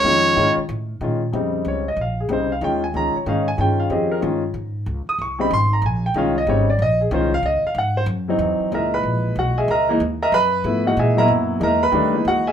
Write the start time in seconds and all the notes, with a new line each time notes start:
Already playing: C#5
0.04 F2 D#3 G#3 C#4 F4
0.36 G#2 D#3 G#3 C#4 F4
0.57 muted upright bass stroke
0.69 A2
1.01 A#2 D#3 G#3 C#4 F4
1.33 F2 C#3 G3 C4 D#4
1.65 C#2 C#5
1.88 D#5
1.97 A#1
2.01 F5
2.20 G#4
2.29 C2 C#3 G3 C4 D#4
2.33 C5
2.52 F5
2.61 D#2 D#3 G#3 C#4 F4 G5
2.84 G#5
2.94 C#2 D#3 G#3 C#4 F4 A#5
3.15 C#5, muted upright bass stroke
3.26 G#2 D#3 G#3 C#4 D#4 F5
3.48 G#5
3.58 G2 D#3 C#4 F4 G#4 G5
3.80 F5
3.90 F2 C4 F4 G4 G#4 D#5
4.12 A#4
4.21 G2 D#3 G#3 C#4 F4
4.54 G#2
4.86 C#2
5.07 D#6, muted upright bass stroke
5.19 C2 C#6
5.39 C#3 G3 C4 D#4 B5
5.51 G#1 C6
5.73 A#5
5.82 A#1
5.86 G#5
6.06 G5
6.14 C2 D#3 G#3 C#4 F4 F5
6.38 D#5
6.47 G#1 C#3 G3 C4 D#4 C#5
6.70 D5
6.79 A#1 D#5
7.01 G#4
7.11 C2 D#3 G#3 C#4 F4 C5
7.34 F5
7.43 C#2 D#5
7.63 F5, muted upright bass stroke
7.75 G#2 F#5
7.97 C5
8.06 F#2
8.28 E3 F#3 C4 D#4
8.39 E2
8.60 muted upright bass stroke
8.71 C#2 A#2 E3 G#3 D#4 A#4 D#5 E5 A#5
8.94 B4 B5
9.03 A#1
9.36 B1 F#4 F#5
9.58 G#4 D#5 E5 G#5
9.68 C#2 A#4 D#5 E5 A#5
9.89 E3 G#3 A#3 D#4
10.00 D#2
10.22 A#4 D#5 E5 A#5
10.32 F#2 B4 B5
10.64 G#2 F3 A3 B3 E4
10.85 E3 G#3 A#3 D#4 F#4 F#5
10.97 A#2 G#4 D#5 E5 G#5
11.17 F#3 A#3 B3 E4 A#4 D#5 E5 A#5
11.28 F#2
11.59 E2 E3 G#3 A#3 D#4 A#5
11.64 A#4 D#5 E5
11.83 B4 B5
11.92 D#2 D#3 G3 A3 D4
12.13 E3 G#3 A#3 D#4
12.25 D2 F#4 F#5
12.47 G#4 D#5 E5 G#5